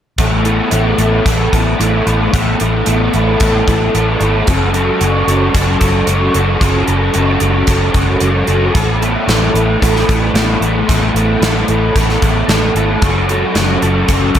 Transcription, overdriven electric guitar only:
0.18 0.70 A3 medium
0.18 0.45 B3 medium
0.18 0.45 E4 medium
0.18 0.44 A4 loud
0.44 0.71 B3 medium
0.44 0.72 E4 medium
0.44 0.72 A4 medium
0.71 1.25 A3 medium
0.71 1.00 B3 medium
0.71 0.99 E4 medium
0.71 0.98 A4 medium
0.98 1.25 B3 soft
0.98 1.27 E4 medium
0.98 1.27 A4 medium
1.25 1.78 A3 medium
1.25 1.53 B3 medium
1.25 1.53 E4 medium
1.25 1.52 A4 medium
1.53 1.78 B3 medium
1.53 1.79 E4 medium
1.53 1.80 A4 medium
1.79 2.32 A3 medium
1.79 2.07 B3 medium
1.79 2.06 E4 medium
1.79 2.06 A4 medium
2.06 2.32 B3 medium
2.06 2.33 E4 medium
2.06 2.33 A4 medium
2.32 2.85 A3 medium
2.32 2.61 B3 medium
2.32 2.61 E4 medium
2.32 2.59 A4 medium
2.60 2.86 B3 medium
2.60 2.87 E4 medium
2.60 2.87 A4 medium
2.85 3.40 A3 medium
2.85 3.14 B3 medium
2.85 3.15 E4 medium
2.85 3.14 A4 medium
3.14 3.40 B3 medium
3.14 3.41 E4 medium
3.14 3.42 A4 medium
3.40 3.94 A3 medium
3.40 3.67 B3 medium
3.40 3.68 E4 medium
3.40 3.67 A4 loud
3.67 3.94 B3 medium
3.67 3.95 E4 medium
3.67 3.96 A4 medium
3.94 4.47 A3 medium
3.94 4.23 B3 medium
3.94 4.22 E4 medium
3.94 4.21 A4 medium
4.22 4.48 B3 medium
4.22 4.49 E4 medium
4.22 4.49 A4 medium
4.48 5.00 F#3 medium
4.48 4.76 C#4 medium
4.48 4.74 F#4 medium
4.48 4.73 A4 medium
4.74 5.02 C#4 medium
4.74 5.02 F#4 medium
4.74 5.03 A4 medium
5.01 5.53 F#3 medium
5.01 5.29 C#4 medium
5.01 5.28 F#4 medium
5.01 5.27 A4 medium
5.27 5.53 C#4 medium
5.27 5.54 F#4 medium
5.27 5.55 A4 medium
5.53 6.05 F#3 medium
5.53 5.80 C#4 medium
5.53 5.79 F#4 medium
5.53 5.79 A4 medium
5.79 6.06 C#4 medium
5.79 6.07 F#4 medium
5.79 6.08 A4 medium
6.07 6.60 F#3 medium
6.07 6.35 C#4 medium
6.07 6.34 F#4 medium
6.07 6.33 A4 medium
6.33 6.60 C#4 medium
6.33 6.60 F#4 medium
6.33 6.62 A4 medium
6.61 7.12 F#3 medium
6.61 6.88 C#4 medium
6.61 6.87 F#4 medium
6.61 6.86 A4 medium
6.87 7.13 C#4 medium
6.87 7.13 F#4 medium
6.87 7.15 A4 medium
7.13 7.66 F#3 medium
7.13 7.41 C#4 medium
7.13 7.40 F#4 medium
7.13 7.41 A4 medium
7.41 7.67 C#4 medium
7.41 7.67 F#4 medium
7.41 7.69 A4 medium
7.67 8.20 F#3 medium
7.67 7.95 C#4 medium
7.67 7.94 F#4 medium
7.67 7.94 A4 medium
7.94 8.21 C#4 medium
7.94 8.22 F#4 medium
7.94 8.23 A4 medium
8.21 8.73 F#3 medium
8.21 8.47 C#4 medium
8.21 8.47 F#4 medium
8.21 8.47 A4 medium
8.47 8.74 C#4 medium
8.47 8.73 F#4 medium
8.47 8.75 A4 medium
8.74 9.27 A3 medium
8.74 9.02 B3 medium
8.74 9.01 E4 loud
8.74 9.00 A4 medium
9.00 9.28 B3 medium
9.00 9.28 E4 medium
9.00 9.29 A4 medium
9.27 9.80 A3 medium
9.27 9.57 B3 medium
9.27 9.56 E4 medium
9.27 9.55 A4 medium
9.55 9.80 B3 medium
9.55 9.82 E4 medium
9.55 9.82 A4 medium
9.81 10.33 A3 medium
9.81 10.08 B3 medium
9.81 10.08 E4 medium
9.81 10.08 A4 medium
10.08 10.33 B3 medium
10.08 10.35 E4 medium
10.08 10.35 A4 medium
10.34 10.87 A3 medium
10.34 10.62 B3 medium
10.34 10.62 E4 medium
10.34 10.60 A4 medium
10.61 10.87 B3 medium
10.61 10.89 E4 medium
10.61 10.89 A4 medium
10.87 11.42 A3 medium
10.87 11.16 B3 medium
10.87 11.15 E4 loud
10.87 11.14 A4 loud
11.14 11.42 B3 soft
11.14 11.43 E4 medium
11.14 11.44 A4 medium
11.43 11.96 A3 medium
11.43 11.70 B3 medium
11.43 11.70 E4 medium
11.43 11.69 A4 medium
11.69 11.96 B3 medium
11.69 11.97 E4 medium
11.69 11.98 A4 medium
11.96 12.49 A3 medium
11.96 12.23 B3 medium
11.96 12.23 E4 medium
11.96 12.22 A4 medium
12.23 12.48 B3 medium
12.23 12.49 E4 medium
12.23 12.50 A4 medium
12.49 13.01 A3 medium
12.49 12.76 B3 medium
12.49 12.76 E4 medium
12.49 12.75 A4 medium
12.76 13.01 B3 medium
12.76 13.03 E4 medium
12.76 13.03 A4 medium
13.02 13.55 F#3 medium
13.02 13.30 C#4 medium
13.02 13.29 F#4 loud
13.02 13.28 A4 medium
13.28 13.56 C#4 medium
13.28 13.57 F#4 medium
13.28 13.57 A4 medium
13.56 14.09 F#3 medium
13.56 13.84 C#4 medium
13.56 13.83 F#4 medium
13.56 13.82 A4 medium
13.82 14.09 C#4 medium
13.82 14.09 F#4 medium
13.82 14.11 A4 medium
14.09 14.39 F#3 medium
14.09 14.36 C#4 medium
14.09 14.35 F#4 medium
14.09 14.34 A4 loud
14.35 14.39 A4 medium

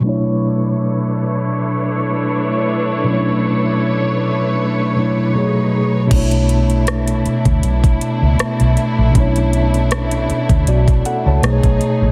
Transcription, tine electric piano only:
0.00 3.01 B2 medium
0.00 3.02 F#3 medium
0.00 3.03 A3 medium
0.05 3.04 D4 medium
0.05 3.05 E4 medium
0.05 3.06 C#5 medium
3.04 4.91 B2 medium
3.04 4.92 F#3 medium
3.04 4.93 A3 medium
3.09 3.15 C#4 soft
3.09 4.95 E4 medium
3.09 4.96 C#5 medium
3.16 4.98 D4 medium
4.96 5.33 B2 medium
4.96 5.34 F#3 soft
4.96 5.34 A3 soft
4.96 5.36 D4 soft
4.96 5.36 E4 soft
5.00 5.37 C#5 medium
5.34 6.06 B2 medium
5.34 6.11 F#3 medium
5.34 6.08 A3 medium
5.34 6.12 D#4 medium
5.34 6.12 G#4 medium
5.38 6.13 C#5 medium
6.07 9.09 B2 medium
6.07 9.10 A3 medium
6.12 9.11 D4 medium
6.12 9.12 E4 medium
6.16 9.13 C#5 medium
9.11 11.37 B2 medium
9.11 11.38 A3 medium
9.16 9.22 C#4 soft
9.16 11.40 E4 medium
9.20 11.42 D4 medium
9.20 10.66 C#5 medium
10.68 11.04 F#4 medium
10.68 11.04 D5 medium
11.06 11.25 A4 medium
11.06 11.25 F#5 medium
11.27 11.51 C#5 medium
11.27 11.62 A5 medium
11.42 12.12 B2 medium
11.42 12.12 A3 medium
11.42 12.12 D#4 medium
11.42 12.12 G#4 medium
11.46 11.52 C5 medium
11.53 12.12 C#5 medium

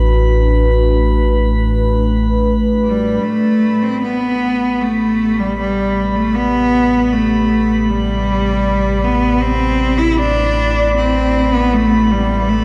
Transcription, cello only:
2.84 3.25 G3 medium
3.24 3.84 A3 medium
3.82 4.01 C4 medium
4.02 4.82 B3 medium
4.81 5.40 A3 medium
5.39 5.57 G3 medium
5.59 6.18 G3 medium
6.16 6.36 A3 medium
6.35 7.14 B3 loud
7.12 7.91 A3 medium
7.89 9.05 G3 medium
9.04 9.43 B3 medium
9.41 9.99 C4 loud
9.98 10.19 E4 loud
10.17 10.94 D4 loud
10.95 11.55 C4 loud
11.54 11.74 B3 loud
11.73 12.12 A3 medium
12.11 12.51 G3 medium
12.49 12.64 A3 medium

